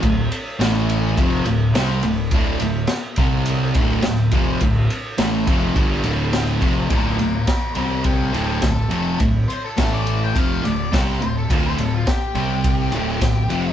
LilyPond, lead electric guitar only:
\new Staff \with { instrumentName = "Lead electric guitar" } { \time 4/4 \key d \minor \tempo 4 = 105 r1 | r1 | r1 | <f' d''>8 <f' d''>8 <a' c''>8 <a' c''>8 <f' a'>8 <f' a'>8 a'4 |
r8 c''16 a'8 d''8 g''16 f''8 d''8 r8 c''16 a'16 | f'16 c''16 a'16 f'16 g'2. | }